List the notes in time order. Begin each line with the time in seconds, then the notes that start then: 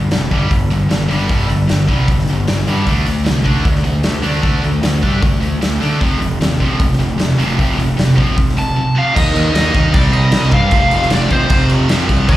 0.11 F1 G2 D3, snare, open hi-hat
0.31 G1 G2 D3 G3, kick, open hi-hat
0.49 G1 G2 D3, kick, open hi-hat
0.70 G1 G2 D3, open hi-hat
0.89 G1 G2 D3, snare, open hi-hat
1.08 G1 G2 D3 G3, open hi-hat
1.28 G1 G2 D3 G3, kick, open hi-hat
1.48 G1 G2 D3, open hi-hat
1.68 G1 G2 D3, snare, open hi-hat
1.87 C2 G2 D3 G3, kick, open hi-hat
2.08 G1 G2 D3, kick, open hi-hat
2.19 snare
2.27 G1 G2 D3, open hi-hat
2.47 G1 G2 D3, snare, open hi-hat
2.67 G2 D3 G3, open hi-hat
2.87 D2 D3 A3 D4, kick, open hi-hat
3.06 D2 D3 A3, open hi-hat
3.24 C2 D3 A3, snare, open hi-hat
3.44 D2 D3 A3 D4, kick, open hi-hat
3.65 D2 D3 A3, kick, open hi-hat
3.75 snare
3.84 D2 D3 A3, open hi-hat
4.03 D2 D3 A3, snare, open hi-hat
4.22 D2 D3 A3 D4, open hi-hat
4.42 D2 D3 A3 D4, kick, open hi-hat
4.63 D2 D3 A3, open hi-hat
4.83 D2 D3 A3, snare, open hi-hat
5.03 G2 D3 A3 D4, kick, open hi-hat
5.21 D2 D3 A3, kick, open hi-hat
5.41 D2 D3 A3, open hi-hat
5.61 D2 D3 A3, snare, open hi-hat
5.81 D3 A3 D4, open hi-hat
6.00 F1 F2 C3 F3, kick, open hi-hat
6.20 F1 F2 C3, open hi-hat
6.40 D#2 F2 C3, snare, open hi-hat
6.60 F1 F2 C3 F3, kick, open hi-hat
6.80 F1 F2 C3, kick, open hi-hat
6.92 snare
6.98 F1 F2 C3, open hi-hat
7.18 F1 F2 C3, snare, open hi-hat
7.38 F1 F2 C3 F3, open hi-hat
7.58 F1 F2 C3 F3, kick, open hi-hat
7.78 F1 F2 C3, open hi-hat
7.97 F1 F2 C3, snare, open hi-hat
8.16 A#1 F2 C3 F3, kick, open hi-hat
8.36 F1 F2 C3, kick, open hi-hat
8.49 snare
8.57 F1 F2 C3 A5, open hi-hat
8.76 F2 C3
8.95 F2 C3 F3 F5
9.15 D#2 D#3 A#3 D#4 D#5, kick, crash
9.36 D#2, crash
9.54 D#2 D#5, snare, crash
9.74 D#2 D#3 A#3 D#4, kick, snare, crash
9.93 C2 C3 G3 C4 D5, kick, crash
10.12 C2 D#5, crash
10.32 C2, snare, crash
10.51 G2 C3 G3 C4 F5, kick, crash
10.71 F1 F2 C3 F3, kick, crash
10.91 F1, crash
11.02 snare
11.10 F1 D5, snare, crash
11.30 F1 F2 C3 F3 C5, kick, crash
11.50 F1, kick, crash
11.70 crash
11.88 F2 C3 F3, snare, crash
12.09 C2, kick, crash
12.28 D#2 D#3 A#3 D#4 D#5, kick, crash